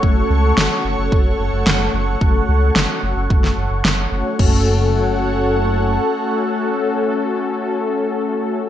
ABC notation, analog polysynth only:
X:1
M:4/4
L:1/8
Q:1/4=110
K:F#m
V:1 name="Analog polysynth"
[A,CF]4- [A,CF] [A,CFA]3 | [A,CFA]4- [A,CFA] z2 [A,CFc] | [A,CFA]8- | [A,CFA]8 |]